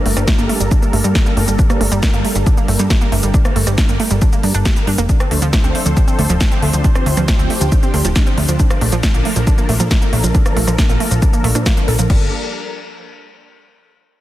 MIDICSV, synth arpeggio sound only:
0, 0, Header, 1, 2, 480
1, 0, Start_track
1, 0, Key_signature, -2, "minor"
1, 0, Tempo, 437956
1, 1742, Time_signature, 4, 2, 24, 8
1, 15571, End_track
2, 0, Start_track
2, 0, Title_t, "Synth arpeggio sound"
2, 0, Program_c, 0, 84
2, 62, Note_on_c, 0, 57, 83
2, 136, Note_off_c, 0, 57, 0
2, 182, Note_on_c, 0, 55, 105
2, 226, Note_off_c, 0, 55, 0
2, 301, Note_on_c, 0, 62, 80
2, 375, Note_off_c, 0, 62, 0
2, 421, Note_on_c, 0, 58, 81
2, 495, Note_off_c, 0, 58, 0
2, 542, Note_on_c, 0, 57, 76
2, 616, Note_off_c, 0, 57, 0
2, 662, Note_on_c, 0, 55, 76
2, 706, Note_off_c, 0, 55, 0
2, 782, Note_on_c, 0, 62, 83
2, 856, Note_off_c, 0, 62, 0
2, 902, Note_on_c, 0, 58, 73
2, 976, Note_off_c, 0, 58, 0
2, 1022, Note_on_c, 0, 57, 76
2, 1096, Note_off_c, 0, 57, 0
2, 1142, Note_on_c, 0, 55, 104
2, 1186, Note_off_c, 0, 55, 0
2, 1261, Note_on_c, 0, 62, 86
2, 1335, Note_off_c, 0, 62, 0
2, 1381, Note_on_c, 0, 58, 74
2, 1455, Note_off_c, 0, 58, 0
2, 1501, Note_on_c, 0, 57, 80
2, 1575, Note_off_c, 0, 57, 0
2, 1621, Note_on_c, 0, 55, 80
2, 1666, Note_off_c, 0, 55, 0
2, 1741, Note_on_c, 0, 62, 82
2, 1815, Note_off_c, 0, 62, 0
2, 1861, Note_on_c, 0, 58, 79
2, 1935, Note_off_c, 0, 58, 0
2, 1980, Note_on_c, 0, 57, 80
2, 2055, Note_off_c, 0, 57, 0
2, 2100, Note_on_c, 0, 55, 109
2, 2145, Note_off_c, 0, 55, 0
2, 2221, Note_on_c, 0, 62, 81
2, 2295, Note_off_c, 0, 62, 0
2, 2341, Note_on_c, 0, 58, 80
2, 2415, Note_off_c, 0, 58, 0
2, 2461, Note_on_c, 0, 57, 76
2, 2535, Note_off_c, 0, 57, 0
2, 2581, Note_on_c, 0, 55, 79
2, 2626, Note_off_c, 0, 55, 0
2, 2702, Note_on_c, 0, 62, 81
2, 2776, Note_off_c, 0, 62, 0
2, 2822, Note_on_c, 0, 58, 75
2, 2896, Note_off_c, 0, 58, 0
2, 2942, Note_on_c, 0, 57, 76
2, 3016, Note_off_c, 0, 57, 0
2, 3062, Note_on_c, 0, 55, 103
2, 3106, Note_off_c, 0, 55, 0
2, 3182, Note_on_c, 0, 62, 92
2, 3256, Note_off_c, 0, 62, 0
2, 3302, Note_on_c, 0, 58, 77
2, 3376, Note_off_c, 0, 58, 0
2, 3421, Note_on_c, 0, 57, 80
2, 3495, Note_off_c, 0, 57, 0
2, 3542, Note_on_c, 0, 55, 80
2, 3586, Note_off_c, 0, 55, 0
2, 3662, Note_on_c, 0, 62, 88
2, 3735, Note_off_c, 0, 62, 0
2, 3782, Note_on_c, 0, 58, 78
2, 3856, Note_off_c, 0, 58, 0
2, 3901, Note_on_c, 0, 57, 81
2, 3975, Note_off_c, 0, 57, 0
2, 4022, Note_on_c, 0, 55, 98
2, 4066, Note_off_c, 0, 55, 0
2, 4142, Note_on_c, 0, 62, 76
2, 4216, Note_off_c, 0, 62, 0
2, 4262, Note_on_c, 0, 58, 79
2, 4336, Note_off_c, 0, 58, 0
2, 4381, Note_on_c, 0, 57, 78
2, 4456, Note_off_c, 0, 57, 0
2, 4502, Note_on_c, 0, 55, 80
2, 4546, Note_off_c, 0, 55, 0
2, 4622, Note_on_c, 0, 62, 77
2, 4696, Note_off_c, 0, 62, 0
2, 4743, Note_on_c, 0, 58, 75
2, 4816, Note_off_c, 0, 58, 0
2, 4862, Note_on_c, 0, 62, 71
2, 4969, Note_off_c, 0, 62, 0
2, 4983, Note_on_c, 0, 62, 103
2, 5026, Note_off_c, 0, 62, 0
2, 5103, Note_on_c, 0, 67, 87
2, 5176, Note_off_c, 0, 67, 0
2, 5222, Note_on_c, 0, 55, 73
2, 5266, Note_off_c, 0, 55, 0
2, 5342, Note_on_c, 0, 62, 81
2, 5453, Note_off_c, 0, 62, 0
2, 5461, Note_on_c, 0, 58, 104
2, 5506, Note_off_c, 0, 58, 0
2, 5582, Note_on_c, 0, 62, 84
2, 5656, Note_off_c, 0, 62, 0
2, 5701, Note_on_c, 0, 60, 79
2, 5775, Note_off_c, 0, 60, 0
2, 5822, Note_on_c, 0, 57, 80
2, 5895, Note_off_c, 0, 57, 0
2, 5942, Note_on_c, 0, 53, 106
2, 5986, Note_off_c, 0, 53, 0
2, 6061, Note_on_c, 0, 62, 78
2, 6135, Note_off_c, 0, 62, 0
2, 6182, Note_on_c, 0, 60, 81
2, 6256, Note_off_c, 0, 60, 0
2, 6300, Note_on_c, 0, 57, 79
2, 6375, Note_off_c, 0, 57, 0
2, 6421, Note_on_c, 0, 53, 78
2, 6465, Note_off_c, 0, 53, 0
2, 6540, Note_on_c, 0, 62, 83
2, 6615, Note_off_c, 0, 62, 0
2, 6660, Note_on_c, 0, 60, 72
2, 6735, Note_off_c, 0, 60, 0
2, 6780, Note_on_c, 0, 57, 76
2, 6855, Note_off_c, 0, 57, 0
2, 6901, Note_on_c, 0, 53, 110
2, 6946, Note_off_c, 0, 53, 0
2, 7021, Note_on_c, 0, 62, 85
2, 7095, Note_off_c, 0, 62, 0
2, 7142, Note_on_c, 0, 60, 77
2, 7216, Note_off_c, 0, 60, 0
2, 7261, Note_on_c, 0, 57, 75
2, 7335, Note_off_c, 0, 57, 0
2, 7381, Note_on_c, 0, 53, 76
2, 7426, Note_off_c, 0, 53, 0
2, 7502, Note_on_c, 0, 62, 87
2, 7576, Note_off_c, 0, 62, 0
2, 7621, Note_on_c, 0, 60, 78
2, 7696, Note_off_c, 0, 60, 0
2, 7741, Note_on_c, 0, 57, 78
2, 7815, Note_off_c, 0, 57, 0
2, 7861, Note_on_c, 0, 53, 104
2, 7906, Note_off_c, 0, 53, 0
2, 7982, Note_on_c, 0, 62, 81
2, 8055, Note_off_c, 0, 62, 0
2, 8101, Note_on_c, 0, 60, 84
2, 8175, Note_off_c, 0, 60, 0
2, 8222, Note_on_c, 0, 57, 73
2, 8296, Note_off_c, 0, 57, 0
2, 8342, Note_on_c, 0, 53, 76
2, 8386, Note_off_c, 0, 53, 0
2, 8461, Note_on_c, 0, 62, 76
2, 8535, Note_off_c, 0, 62, 0
2, 8581, Note_on_c, 0, 60, 76
2, 8655, Note_off_c, 0, 60, 0
2, 8702, Note_on_c, 0, 57, 75
2, 8776, Note_off_c, 0, 57, 0
2, 8821, Note_on_c, 0, 53, 105
2, 8865, Note_off_c, 0, 53, 0
2, 8940, Note_on_c, 0, 62, 85
2, 9015, Note_off_c, 0, 62, 0
2, 9060, Note_on_c, 0, 60, 74
2, 9135, Note_off_c, 0, 60, 0
2, 9181, Note_on_c, 0, 57, 78
2, 9255, Note_off_c, 0, 57, 0
2, 9300, Note_on_c, 0, 53, 82
2, 9345, Note_off_c, 0, 53, 0
2, 9420, Note_on_c, 0, 62, 87
2, 9495, Note_off_c, 0, 62, 0
2, 9540, Note_on_c, 0, 58, 78
2, 9615, Note_off_c, 0, 58, 0
2, 9661, Note_on_c, 0, 57, 76
2, 9735, Note_off_c, 0, 57, 0
2, 9781, Note_on_c, 0, 53, 106
2, 9825, Note_off_c, 0, 53, 0
2, 9901, Note_on_c, 0, 62, 80
2, 9975, Note_off_c, 0, 62, 0
2, 10021, Note_on_c, 0, 58, 78
2, 10095, Note_off_c, 0, 58, 0
2, 10140, Note_on_c, 0, 57, 79
2, 10215, Note_off_c, 0, 57, 0
2, 10261, Note_on_c, 0, 53, 76
2, 10306, Note_off_c, 0, 53, 0
2, 10381, Note_on_c, 0, 62, 83
2, 10455, Note_off_c, 0, 62, 0
2, 10500, Note_on_c, 0, 58, 74
2, 10575, Note_off_c, 0, 58, 0
2, 10620, Note_on_c, 0, 57, 77
2, 10695, Note_off_c, 0, 57, 0
2, 10740, Note_on_c, 0, 53, 107
2, 10785, Note_off_c, 0, 53, 0
2, 10859, Note_on_c, 0, 62, 88
2, 10934, Note_off_c, 0, 62, 0
2, 10979, Note_on_c, 0, 58, 75
2, 11054, Note_off_c, 0, 58, 0
2, 11100, Note_on_c, 0, 57, 78
2, 11175, Note_off_c, 0, 57, 0
2, 11220, Note_on_c, 0, 53, 80
2, 11265, Note_off_c, 0, 53, 0
2, 11339, Note_on_c, 0, 62, 89
2, 11415, Note_off_c, 0, 62, 0
2, 11459, Note_on_c, 0, 58, 78
2, 11534, Note_off_c, 0, 58, 0
2, 11579, Note_on_c, 0, 57, 80
2, 11654, Note_off_c, 0, 57, 0
2, 11699, Note_on_c, 0, 53, 104
2, 11745, Note_off_c, 0, 53, 0
2, 11819, Note_on_c, 0, 62, 80
2, 11894, Note_off_c, 0, 62, 0
2, 11939, Note_on_c, 0, 58, 81
2, 12014, Note_off_c, 0, 58, 0
2, 12059, Note_on_c, 0, 57, 78
2, 12134, Note_off_c, 0, 57, 0
2, 12179, Note_on_c, 0, 53, 79
2, 12225, Note_off_c, 0, 53, 0
2, 12300, Note_on_c, 0, 62, 77
2, 12375, Note_off_c, 0, 62, 0
2, 12420, Note_on_c, 0, 58, 76
2, 12495, Note_off_c, 0, 58, 0
2, 12540, Note_on_c, 0, 57, 98
2, 12615, Note_off_c, 0, 57, 0
2, 12660, Note_on_c, 0, 62, 83
2, 12705, Note_off_c, 0, 62, 0
2, 12780, Note_on_c, 0, 58, 108
2, 12825, Note_off_c, 0, 58, 0
2, 12900, Note_on_c, 0, 53, 76
2, 12975, Note_off_c, 0, 53, 0
2, 13020, Note_on_c, 0, 69, 79
2, 13095, Note_off_c, 0, 69, 0
2, 13140, Note_on_c, 0, 53, 76
2, 13215, Note_off_c, 0, 53, 0
2, 13260, Note_on_c, 0, 55, 94
2, 13484, Note_off_c, 0, 55, 0
2, 15571, End_track
0, 0, End_of_file